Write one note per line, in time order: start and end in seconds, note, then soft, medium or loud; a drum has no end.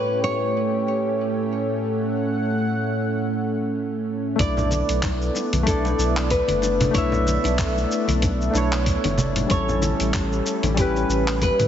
0.00 4.36 A2 medium
0.00 3.09 A3 medium
0.00 4.36 A3 medium
0.00 4.36 C#4 medium
0.00 3.11 E4 medium
0.00 1.82 G4 medium
0.00 3.12 G4 medium
0.00 0.23 B4 medium
0.00 3.13 C#5 medium
0.24 3.07 C#5 medium
1.83 4.36 F#5 medium
4.36 4.83 B1 loud
4.36 5.62 A3 medium
4.36 5.63 D4 medium
4.36 kick loud
4.36 closed hi-hat medium
4.40 9.46 A3 medium
4.40 9.46 B3 medium
4.40 9.46 D4 medium
4.40 5.64 E4 medium
4.40 5.31 D5 loud
4.40 5.65 D5 medium
4.40 shaker soft
4.57 high bongo medium
4.57 low conga medium
4.57 shaker soft
4.71 high conga medium
4.71 shaker medium
4.89 5.30 B1 medium
4.89 closed hi-hat soft
4.89 shaker soft
5.03 kick loud
5.03 clap medium
5.03 closed hi-hat medium
5.03 high bongo medium
5.03 shaker soft
5.22 shaker soft
5.35 high bongo medium
5.35 shaker medium
5.53 5.94 B1 loud
5.53 closed hi-hat soft
5.53 high conga medium
5.53 shaker soft
5.63 6.89 A3 loud
5.63 6.91 D4 medium
5.63 kick loud
5.63 closed hi-hat medium
5.67 6.92 E4 medium
5.67 6.33 A4 medium
5.67 6.93 D5 loud
5.67 shaker soft
5.85 high bongo medium
5.85 shaker soft
5.98 6.42 B1 loud
5.98 shaker medium
6.17 clap medium
6.17 high bongo soft
6.17 shaker soft
6.30 6.94 B4 loud
6.30 kick loud
6.30 closed hi-hat medium
6.30 shaker soft
6.48 6.89 F#1 medium
6.48 closed hi-hat soft
6.48 high conga medium
6.48 shaker soft
6.62 high bongo medium
6.62 shaker medium
6.80 closed hi-hat soft
6.80 low conga medium
6.80 shaker soft
6.91 7.38 B1 medium
6.91 8.49 A3 loud
6.91 8.51 D4 medium
6.91 7.86 C#5 loud
6.91 kick loud
6.91 closed hi-hat medium
6.91 high bongo medium
6.95 8.52 E4 medium
6.95 8.53 E5 loud
6.95 shaker soft
7.12 low conga loud
7.12 shaker soft
7.27 high conga medium
7.27 shaker medium
7.44 7.85 B1 medium
7.44 closed hi-hat soft
7.44 high bongo medium
7.44 shaker soft
7.59 kick loud
7.59 clap medium
7.59 closed hi-hat medium
7.59 shaker soft
7.76 high bongo medium
7.76 shaker soft
7.91 shaker medium
8.08 8.49 B1 loud
8.08 closed hi-hat soft
8.08 high conga medium
8.08 shaker soft
8.22 kick loud
8.22 closed hi-hat medium
8.22 high bongo medium
8.22 shaker soft
8.41 shaker soft
8.51 8.97 B1 loud
8.51 9.45 A3 medium
8.51 9.46 D4 medium
8.51 high bongo medium
8.55 9.47 E4 medium
8.55 9.48 C#5 medium
8.55 shaker medium
8.72 clap medium
8.72 shaker soft
8.86 kick loud
8.86 closed hi-hat medium
8.86 shaker soft
9.04 9.45 F#1 loud
9.04 closed hi-hat soft
9.04 high bongo medium
9.04 high conga medium
9.04 shaker soft
9.18 low conga medium
9.18 shaker medium
9.36 closed hi-hat soft
9.36 high bongo soft
9.36 low conga loud
9.36 shaker soft
9.46 9.93 A1 loud
9.46 10.72 G3 medium
9.46 10.73 C#4 medium
9.46 kick loud
9.46 closed hi-hat soft
9.50 11.68 G3 medium
9.50 11.68 A3 medium
9.50 11.68 C#4 medium
9.50 10.75 E4 medium
9.50 10.76 A4 medium
9.50 10.42 C#5 loud
9.50 shaker soft
9.68 low conga medium
9.68 shaker soft
9.82 high bongo medium
9.82 high conga medium
9.82 shaker medium
10.00 10.40 A1 medium
10.00 closed hi-hat soft
10.00 shaker soft
10.14 kick loud
10.14 clap medium
10.14 closed hi-hat medium
10.14 high bongo medium
10.14 shaker soft
10.32 shaker soft
10.46 shaker medium
10.63 11.04 A1 loud
10.63 closed hi-hat soft
10.63 high bongo medium
10.63 high conga medium
10.63 shaker soft
10.74 11.68 G3 loud
10.74 11.68 C#4 medium
10.74 kick loud
10.74 closed hi-hat medium
10.74 shaker soft
10.78 11.68 E4 medium
10.78 11.44 G4 medium
10.78 11.68 B4 loud
10.96 high bongo soft
10.96 shaker soft
11.09 11.52 A1 loud
11.09 shaker medium
11.28 clap medium
11.28 shaker soft
11.41 11.68 B4 loud
11.41 kick loud
11.41 closed hi-hat medium
11.41 high bongo medium
11.41 shaker soft
11.59 11.68 A2 loud
11.59 closed hi-hat soft
11.59 high conga medium
11.59 shaker soft